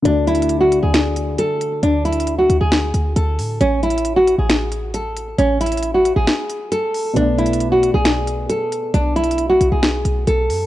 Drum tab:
HH |x-----------x---x---x---x-----------x-----------x-----------x-----------x-----------x-----------|x-----------x---x---x---x-----------x-----------x-----------x-----------x-----------o-----------|x-----------x---x---x---x-----------x-----------x-----------x-----------x-----------x-----------|x-----------x--x--x--x--x-----------x-----------x-----------x-----------x-----------o-----------|
SD |------------------------------------------------o-----------------------------------------------|------------------------------------------------o-----------------------------------------------|------------------------------------------------o-----------------------------------------------|------------------------------------------------o-----------------------------------------------|

HH |x-----------x---x---x---x-----------x-----------x-----------x-----------x-----------x-----------|x-----------x---x---x---x-----------x-----------x-----------x-----------x-----------o-----------|
SD |------------------------------------------------o-----------------------------------------------|------------------------------------------------o-----------------------------------------------|